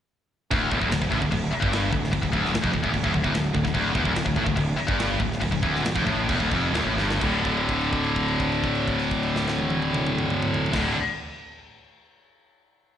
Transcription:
0.51 D1 D2, kick, crash
0.71 E1 E2, kick, crash
0.81 D1 D2, kick
0.91 D1 D2, snare, crash
1.01 D1 D2, kick
1.10 A1 A2, kick, crash
1.20 D1 D2, kick
1.31 D1 D2, kick, crash
1.51 muted distorted electric guitar stroke, muted picked electric bass stroke, crash
1.60 G1 G2, kick
1.73 snare, crash
1.91 D1 D2, kick, crash
2.04 snare
2.11 D1 D2, kick, crash
2.22 D1 D2, kick
2.32 D1 D2, kick, crash
2.45 snare
2.53 D1 D2, snare, crash
2.62 F1 F2, kick
2.73 D1 D2, kick, crash
2.83 E1 E2, kick
2.93 D1 D2, kick, crash
3.04 D1 D2, kick
3.13 D1 D2, kick, crash
3.24 E1 E2, kick
3.34 D1 D2, snare, crash
3.54 D1 D2, kick, crash
3.64 D1 D2, kick, snare
3.74 D1 D2, kick, crash
3.95 E1 E2, kick, crash
4.04 D1 D2, kick
4.14 D1 D2, snare, crash
4.25 D1 D2, kick
4.36 A1 A2, kick, crash
4.45 D1 D2, kick
4.56 D1 D2, kick, crash
4.77 muted distorted electric guitar stroke, muted picked electric bass stroke, crash
4.87 G1 G2, kick
4.99 snare, crash
5.20 D1 D2, kick, crash
5.32 snare
5.40 D1 D2, kick, crash
5.51 D1 D2, kick
5.62 D1 D2, kick, crash
5.75 snare
5.83 D1 D2, snare, crash
5.95 F1 F2, kick
6.06 A1 A2, kick, crash
6.29 E1 E2, kick, crash
6.40 D1 D2, kick
6.51 F1 F2, kick, crash
6.73 D1 D2, snare, crash
6.85 A1 A2
6.96 G1 G2, snare
7.11 snare
7.20 D1 D2 A2, kick, crash
7.24 D3
7.45 kick, crash
7.57 crash
7.69 kick, crash
7.81 crash
7.93 kick, crash
8.04 crash
8.16 kick, crash
8.28 crash
8.40 kick, crash
8.52 crash
8.63 kick, crash
8.75 crash
8.88 kick, crash
8.99 crash
9.11 kick, crash
9.23 crash
9.36 snare
9.48 snare
9.58 high tom
9.70 high tom
9.82 high tom
9.94 mid tom
10.07 mid tom
10.18 mid tom
10.30 mid tom
10.42 mid tom
10.54 floor tom
10.66 floor tom
10.71 D1 D2 A2, kick, snare, crash
10.76 D3

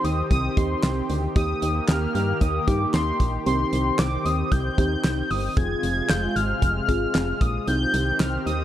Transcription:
Already playing: D#3 C4 G4
0.04 D#2 D#6, closed hi-hat
0.31 C2 D#6, kick, closed hi-hat
0.57 D#2 C4 D#4 G4 C6, kick, closed hi-hat
0.83 C2, snare, clap, closed hi-hat
1.10 D2, closed hi-hat
1.36 D#2 D#3 A#3 D#4 G4 D#6, kick, closed hi-hat
1.62 D#2, closed hi-hat
1.88 D#2 F6, snare, clap, closed hi-hat
2.15 G2, closed hi-hat
2.41 D#2 D#6, kick, closed hi-hat
2.67 G2 A#3 D#4 G4 D6, kick, closed hi-hat
2.94 D#2 C6, snare, clap, closed hi-hat
3.20 A#1, kick, closed hi-hat
3.46 C2 C4 D#4 G4 C6, closed hi-hat
3.73 C2, closed hi-hat
3.99 C2 D6, snare, clap, closed hi-hat
4.25 D#2 D#6, closed hi-hat
4.52 C2 G6, kick, closed hi-hat
4.78 D#2 C4 D#4 G4, kick, closed hi-hat
5.04 C2, snare, clap, closed hi-hat
5.31 G1 D#6, open hi-hat
5.57 F1 C3 G#3 C4 F4 G#4 G#6, kick, closed hi-hat
5.83 F1, closed hi-hat
6.09 F1 G6, snare, clap, closed hi-hat
6.36 G#1 F6, closed hi-hat
6.62 F1, kick, closed hi-hat
6.89 G#1 C4 F4 G#4, kick, closed hi-hat
7.15 F1, snare, clap, closed hi-hat
7.41 A#1 D#6, kick, closed hi-hat
7.67 C2 D#3 C4 D#4 G4 G6, closed hi-hat
7.94 C2, closed hi-hat
8.20 C2 F6, snare, clap, closed hi-hat
8.46 D#2 D#6, closed hi-hat

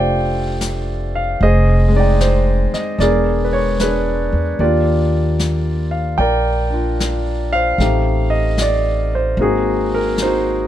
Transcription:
Already playing: F1 A3 C4 D4 F4 G4 A4 C5 D5 F5 G5
0.61 snare, hi-hat pedal
1.15 F5
1.41 F1 G#4 C5 D#5, brush sweep
1.88 G#3 C4
1.95 D#4 D5
2.00 G5
2.21 C5, snare, hi-hat pedal
2.72 D#5, muted upright bass stroke, snare
2.98 E1 G#3 B3 D4 A#4 D5, brush sweep, snare
3.02 G#4
3.45 B4
3.53 C#5
3.79 G#4 B4, snare, hi-hat pedal
3.84 D4
4.32 E2
4.59 D#2 A#3 D4 F4 G4 D5, brush sweep
4.63 F4
5.39 snare, hi-hat pedal
5.91 F5
6.18 A#1 A#4 D5 G5, brush sweep
6.70 D4 F4
7.00 snare, hi-hat pedal
7.53 C5 F5
7.78 A1 A3 C4 D#4 G4, brush sweep, snare
8.30 D#5
8.58 D5, snare, hi-hat pedal
9.15 C5
9.37 G#1 A#3 C4 D#4 F#4, brush sweep
9.42 C4 D#4 G#4
9.94 A#4
10.18 snare, hi-hat pedal
10.22 D#4 F#4 C5

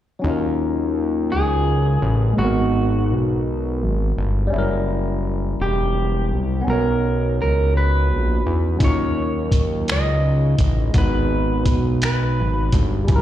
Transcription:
0.19 F#3 C#4
0.24 D#2 D#4 F4
0.30 A#4
1.32 C#2 G#4
2.02 A1
2.33 G#3 A#3
2.38 G#1 B3 D#4 F#4
2.44 A#4
3.10 B1
3.82 G#1
4.18 G1
4.47 G3 C#4
4.53 F#1 F#3 E4
4.58 A#4
5.60 E1 G4
6.31 C2
6.61 B3 C#4
6.67 B1 D#4 F#4 A#4
6.73 C#5
7.39 C#2 A#4
7.77 B4
8.11 A#1
8.46 E2
8.76 F#3 C#4, kick
8.80 D#2 D#4 C#5, closed hi-hat
8.85 F4 A#4
9.52 kick, closed hi-hat
9.88 C#2 D#5, finger snap, closed hi-hat
10.58 A1, kick, closed hi-hat
10.90 G#3 B3, kick, closed hi-hat
10.95 G#1 D#4 F#4 B4
11.02 B4
11.66 B1, kick, closed hi-hat
12.02 B4, finger snap, closed hi-hat
12.39 G#1
12.72 G1, kick, closed hi-hat
13.04 G3 C#4, closed hi-hat
13.08 F#1 E4, kick
13.13 F#3 A#4

